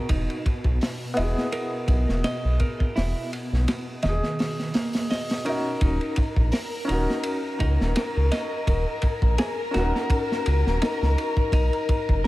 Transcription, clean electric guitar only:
0.10 D#4
1.53 A#4
2.24 D#5
2.60 A#4
2.96 E4
4.03 D#3
4.74 A#3
5.10 D#5
5.46 A#4
5.81 D#4
6.53 A#4
6.88 D#4
7.60 D#4
7.96 A#4
8.32 D#5
9.38 G#4
9.74 F#4
10.82 D#4
11.53 D#4

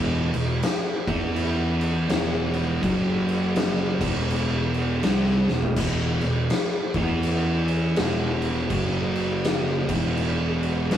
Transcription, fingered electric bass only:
Already playing: E1
0.35 E1
1.08 E2
2.11 E1
2.83 F#1
4.01 E1
5.03 C2
5.48 E1
5.76 E1
6.22 E1
6.95 E2
7.98 E1
8.70 F#1
9.89 E1
10.91 C2

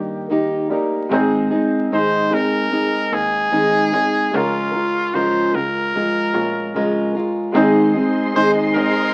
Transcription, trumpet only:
Already playing: G4
1.94 C5
2.34 A#4
3.14 G#4
4.36 F4
5.15 C5
5.55 A#4
8.36 C5
8.75 A#4

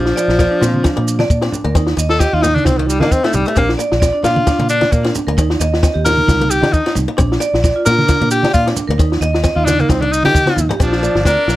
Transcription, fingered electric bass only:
Already playing: A#1
0.28 A#1
0.62 A#2
0.98 A#2
1.30 A#2
1.64 D2
1.75 D#2
1.97 D#2
2.33 D#2
2.66 C2
3.00 D#3
3.34 C2
3.57 A#1
3.92 A#1
4.23 A#2
4.59 A#2
4.92 A#2
5.27 D2
5.38 D#2
5.60 D#2
5.95 D#2
6.28 C2
6.62 D#3
6.96 C2
7.19 A#1
7.53 A#1
7.87 A#2
8.21 A#2
8.55 A#2
8.89 D2
8.99 D#2
9.21 D#2
9.56 D#2
9.89 C2
10.24 D#3
10.57 D#2
10.80 A#1
11.15 G1
11.26 D2
11.48 A#1

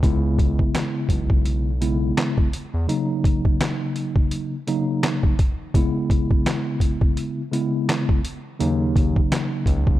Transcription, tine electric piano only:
0.03 C#3 G#3 B3 E4
1.81 C#3 G#3 B3 E4
2.88 C#3 F#3 A#3 D#4
4.67 C#3 F#3 A#3 D#4
5.75 C#3 G#3 B3 E4
7.52 C#3 G#3 B3 E4
8.59 C#3 F#3 A#3 D#4

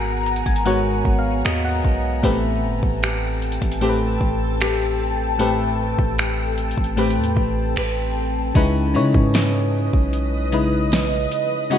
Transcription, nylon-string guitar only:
Already playing: G#3 B3 F#4 A#4
0.66 B3 F#4 A#4
1.45 B3 F#4 A#4
2.23 A3 B4
3.02 G4
3.81 C4 G4 B4
4.60 C4 G4 B4
5.39 A3 B4
6.18 G4
6.97 C4 G4 B4
7.76 C4 G4 B4
8.55 C#4
8.95 B4
9.34 D#5
11.71 C#4

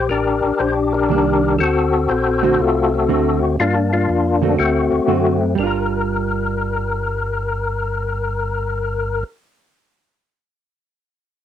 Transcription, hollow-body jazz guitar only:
1.10 D#3 G3 A#3 D4
2.43 D3 A3 C4 F#4
3.08 D3 A3 C4 F#4
4.42 D3 A3 C4 F#4
5.08 D3 A3 C4 F#4
5.55 G3
5.60 D4 F4
5.67 A#4

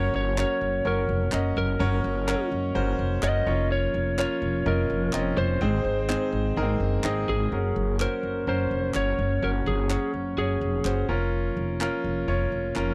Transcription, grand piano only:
Already playing: C#4 F#4 A#4 C#5
0.37 C#4 F#4 A#4 C#5
0.85 C#4 F#4 A#4 C#5
1.32 C#4 F#4 A#4 D#5
1.79 C#4 F#4 A#4 C#5
2.27 C#4 F#4 A#4 C#5
2.75 C#4 F#4 A#4 C5
3.23 C#4 F#4 A#4 D#5
3.46 C#4 F4 A#4 C#5
4.18 C#4 F4 A#4 C#5
4.66 C#4 F4 A#4 D#5
5.13 C4 F4 A#4 D#5
5.19 C#4
5.61 G#2 C4 D#4 G#4 C5
6.09 C4 D#4 G#4 C5
6.57 A#3 D#4 G#4 A#4
6.63 C4
7.04 C4 D#4 G#4 D#5
7.52 C#4 F#4 A#4
8.00 C#4 F#4 C5
8.47 C#4 F#4 A#4
8.95 C#4 F#4 C#5
9.42 C#4 F#4 C#5
9.89 C#4 F#4 C#5
10.38 C#4 F#4 C#5
10.85 C#4 F#4 C5
11.09 C#4 F4 A#4
11.81 C#4 F4 A#4
12.28 C#4 F4 C#5
12.75 C#4 F4 A#4

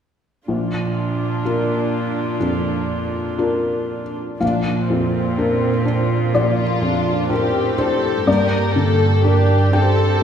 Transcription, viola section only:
0.48 D4 F4
4.41 D4 F4
4.91 C4
6.35 A#3
6.82 D4
7.31 C4 F4
7.79 G4
8.27 A#3
8.76 A#3
9.23 D4 G4
9.74 C4

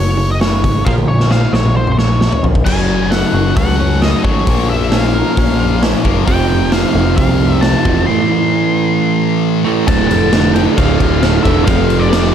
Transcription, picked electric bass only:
Already playing: F#1
0.64 G#1
0.86 A#1
1.08 A#1
1.53 A#1
2.43 A#1
2.66 F#1
3.33 F#1
3.56 C#2
4.24 G#1
4.47 A#1
5.37 A#1
6.04 F#1
6.28 F1
6.95 F1
7.18 C2
7.85 E1
9.88 D1
10.10 F1
10.78 D1
11.00 D1
11.45 E1
11.68 F1

